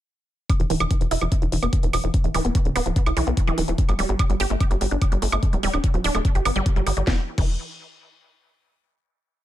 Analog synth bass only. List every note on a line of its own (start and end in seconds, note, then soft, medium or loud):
0.60 0.66 E1 medium
0.70 0.76 D1 loud
0.80 0.86 E1 medium
1.01 1.07 E1 medium
1.11 1.17 E1 loud
1.21 1.27 E1 medium
1.42 1.48 E1 medium
1.52 1.58 E1 loud
1.63 1.69 E1 medium
1.83 1.89 E1 medium
1.93 1.99 E1 loud
2.04 2.10 E1 medium
2.24 2.30 D1 medium
2.35 2.40 D1 loud
2.45 2.51 D1 medium
2.65 2.71 D1 medium
2.76 2.81 D1 loud
2.86 2.92 D1 medium
3.06 3.12 B1 medium
3.17 3.23 B1 loud
3.27 3.33 B1 medium
3.47 3.53 D1 medium
3.58 3.64 D1 loud
3.68 3.74 D1 medium
3.89 3.94 G1 medium
3.99 4.05 D1 loud
4.09 4.15 G1 medium
4.30 4.36 G1 medium
4.40 4.46 G1 loud
4.50 4.56 G1 medium
4.71 4.77 G1 medium
4.81 4.87 G1 loud
4.91 4.97 G1 medium
5.12 5.18 G1 medium
5.22 5.28 G1 loud
5.32 5.38 G1 medium
5.53 5.59 D1 medium
5.63 5.69 D1 loud
5.73 5.79 D1 medium
5.94 6.00 D1 medium
6.04 6.10 D1 loud
6.15 6.21 D1 medium
6.35 6.41 G1 medium
6.45 6.51 G1 loud
6.56 6.62 G1 medium
6.76 6.82 G1 medium
6.87 6.92 G1 loud
6.97 7.03 G1 medium
7.07 7.19 E1 medium
7.38 7.57 E1 loud